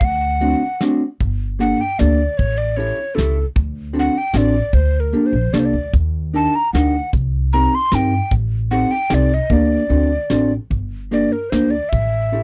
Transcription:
0.00 0.53 D2 medium
0.00 kick medium
0.00 closed hi-hat soft
0.04 0.82 F#5 medium
0.41 0.61 A3 medium
0.41 0.61 C4 medium
0.41 0.61 D4 medium
0.41 0.61 F#4 medium
0.41 closed hi-hat soft
0.81 1.02 A3 medium
0.81 1.02 C4 medium
0.81 1.02 D4 medium
0.81 1.02 F#4 medium
0.81 snare soft
0.81 closed hi-hat soft
1.21 1.72 G1 medium
1.21 kick medium
1.21 closed hi-hat soft
1.59 1.80 A#3 medium
1.59 1.80 D4 medium
1.59 1.80 G4 soft
1.59 1.80 A4 medium
1.59 1.82 F#5 medium
1.59 closed hi-hat soft
1.81 2.01 G5 medium
1.99 2.26 D2 medium
1.99 2.20 A#3 medium
1.99 2.20 D4 medium
1.99 2.20 G4 medium
1.99 2.20 A4 medium
1.99 2.39 D5 medium
1.99 snare soft
1.99 closed hi-hat soft
2.37 2.90 A1 medium
2.37 2.59 C#5 medium
2.37 kick medium
2.37 closed hi-hat soft
2.58 2.78 D5 medium
2.77 2.98 C#4 medium
2.77 2.98 E4 medium
2.77 2.98 G4 medium
2.77 2.98 A4 medium
2.77 3.16 C#5 medium
2.77 closed hi-hat soft
3.15 3.43 C#2 medium
3.15 3.36 C#4 medium
3.15 3.36 E4 medium
3.15 3.36 G4 medium
3.15 3.45 A4 medium
3.15 3.36 A4 medium
3.15 snare soft
3.15 closed hi-hat soft
3.56 4.07 D2 medium
3.56 kick medium
3.56 closed hi-hat soft
3.93 4.14 C4 medium
3.93 4.14 D4 medium
3.93 4.14 F#4 medium
3.93 4.15 A4 medium
3.93 closed hi-hat soft
3.99 4.19 F#5 medium
4.18 4.38 G5 loud
4.33 4.59 A1 medium
4.33 4.54 C4 medium
4.33 4.54 D4 medium
4.33 4.55 F#4 medium
4.33 4.55 A4 medium
4.33 4.76 D5 medium
4.33 snare medium
4.33 closed hi-hat soft
4.73 5.12 D2 medium
4.73 5.01 C5 medium
4.73 kick medium
4.73 closed hi-hat soft
5.00 5.27 A#4 medium
5.13 5.34 A#3 medium
5.13 5.34 D4 medium
5.13 5.34 G4 medium
5.13 5.34 A4 medium
5.13 closed hi-hat soft
5.26 5.54 C5 medium
5.33 5.51 A#1 medium
5.53 5.72 C2 medium
5.53 5.74 A#3 medium
5.53 5.74 D4 medium
5.53 5.74 G4 medium
5.53 5.74 A4 medium
5.53 5.61 D5 medium
5.53 snare medium
5.53 closed hi-hat soft
5.59 5.67 C5 medium
5.65 5.93 D5 medium
5.73 5.91 D2 medium
5.93 6.46 D#2 medium
5.93 kick medium
5.93 closed hi-hat soft
6.33 6.54 D4 medium
6.33 6.55 D#4 medium
6.33 6.54 G4 medium
6.33 6.55 A#4 medium
6.33 6.57 A5 medium
6.33 closed hi-hat soft
6.55 6.73 A#5 medium
6.73 6.99 D2 medium
6.73 6.94 D4 medium
6.73 6.95 D#4 soft
6.73 6.95 G4 medium
6.73 6.95 A#4 medium
6.73 7.11 F#5 medium
6.73 snare medium
6.73 closed hi-hat soft
7.13 7.65 C2 medium
7.13 kick medium
7.13 closed hi-hat soft
7.52 7.74 C4 medium
7.52 7.74 D#4 soft
7.52 7.74 G4 medium
7.52 7.74 A#4 medium
7.52 7.76 A#5 medium
7.52 closed hi-hat soft
7.75 7.96 C6 medium
7.92 8.18 G2 medium
7.92 8.13 C4 medium
7.92 8.13 D#4 medium
7.92 8.13 G4 medium
7.92 8.13 A#4 medium
7.92 8.33 G5 medium
7.92 snare medium
7.92 closed hi-hat soft
8.31 8.83 A1 medium
8.31 kick medium
8.31 closed hi-hat soft
8.71 8.91 C4 medium
8.71 8.91 D#4 medium
8.71 8.92 G4 medium
8.71 8.92 A4 medium
8.71 8.93 F#5 medium
8.71 closed hi-hat soft
8.91 9.16 G5 medium
9.10 9.37 C2 medium
9.10 9.31 C4 medium
9.10 9.31 D#4 medium
9.10 9.31 G4 medium
9.10 9.31 A4 medium
9.10 9.35 D5 medium
9.10 snare medium
9.10 closed hi-hat soft
9.34 9.54 D#5 medium
9.49 9.76 D2 medium
9.49 9.82 A#3 medium
9.49 9.82 D4 medium
9.49 9.83 G4 medium
9.49 9.82 A#4 medium
9.49 10.52 D5 medium
9.49 kick medium
9.49 closed hi-hat soft
9.89 10.16 D2 medium
9.89 10.10 C4 medium
9.89 10.10 D4 soft
9.89 10.11 F#4 medium
9.89 10.11 A4 medium
9.89 closed hi-hat soft
10.30 10.56 A1 medium
10.30 10.51 C4 medium
10.30 10.51 D4 medium
10.30 10.51 F#4 medium
10.30 10.51 A4 medium
10.30 snare soft
10.30 closed hi-hat soft
10.70 11.23 G1 medium
10.70 kick medium
10.70 closed hi-hat soft
11.11 11.32 A#3 medium
11.11 11.32 D4 soft
11.11 11.32 G4 medium
11.11 11.33 A#4 medium
11.11 11.34 D5 medium
11.11 closed hi-hat soft
11.32 11.51 A#4 medium
11.50 11.78 D2 medium
11.50 11.73 A#3 medium
11.50 11.73 D4 medium
11.50 11.73 G4 medium
11.50 11.73 A#4 medium
11.50 11.72 C5 medium
11.50 snare medium
11.50 closed hi-hat soft
11.70 11.90 D5 medium
11.89 12.43 A1 medium
11.89 12.43 E5 medium
11.89 kick medium
11.89 closed hi-hat soft
12.32 12.43 C#4 medium
12.32 12.43 E4 medium
12.32 12.43 G4 medium
12.32 12.43 A4 medium
12.32 closed hi-hat soft

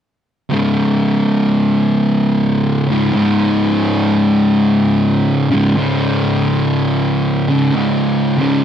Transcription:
0.50 2.91 C#2 medium
0.50 2.88 G#2 medium
0.50 2.87 C#3 medium
2.88 3.12 C#2 medium
2.88 3.12 G#2 medium
2.88 3.15 C#3 medium
3.12 5.50 C#2 medium
3.12 5.51 G#2 medium
3.12 5.50 C#3 medium
5.51 5.74 C#2 medium
5.51 5.75 G#2 medium
5.51 5.74 C#3 medium
5.76 7.52 C#2 medium
5.76 7.48 G#2 medium
5.76 7.49 C#3 loud
7.49 7.72 C#2 medium
7.49 7.73 G#2 medium
7.49 7.76 C#3 loud
7.72 8.37 C#2 medium
7.72 8.38 G#2 medium
7.76 8.41 C#3 medium
8.37 8.64 C#2 medium
8.37 8.64 G#2 medium
8.37 8.64 C#3 loud

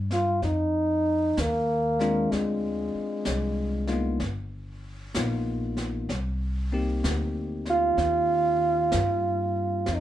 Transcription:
0.00 0.39 G2 medium
0.11 0.41 F4 medium
0.11 snare soft
0.42 1.34 F2 medium
0.42 1.42 D#4 loud
0.42 brush sweep soft
0.42 snare soft
1.37 2.29 D#2 medium
1.37 2.34 A#3 medium
1.37 snare medium
1.37 hi-hat pedal soft
1.99 3.20 G#3 medium
1.99 3.20 C4 medium
1.99 3.20 D4 medium
1.99 3.20 F4 medium
1.99 snare soft
2.32 2.90 D2 medium
2.32 4.21 G#3 medium
2.32 brush sweep soft
2.32 snare soft
2.95 muted upright bass stroke soft
3.25 4.18 C2 medium
3.25 snare medium
3.25 hi-hat pedal medium
3.87 4.17 A#3 medium
3.87 4.17 B3 medium
3.87 4.17 D#4 medium
3.87 4.18 F4 medium
3.87 snare soft
4.20 5.12 G1 medium
4.20 brush sweep soft
4.20 snare soft
5.14 6.06 A#1 medium
5.14 5.71 A#3 medium
5.14 5.71 B3 medium
5.14 5.71 D#4 soft
5.14 5.71 F4 medium
5.14 snare soft
5.14 hi-hat pedal medium
5.77 snare soft
6.09 7.00 C2 medium
6.09 brush sweep soft
6.09 snare soft
6.72 7.01 A#3 medium
6.72 7.01 C4 medium
6.72 7.01 D#4 medium
6.72 7.02 G4 medium
7.04 7.95 D2 medium
7.04 snare medium
7.04 hi-hat pedal medium
7.65 snare soft
7.69 9.96 F4 loud
7.97 8.89 D#2 medium
7.97 brush sweep soft
7.97 snare soft
8.92 9.85 G2 medium
8.92 snare medium
8.92 hi-hat pedal medium
9.86 10.00 F2 medium
9.86 brush sweep medium
9.86 snare soft
9.94 10.00 D#4 medium

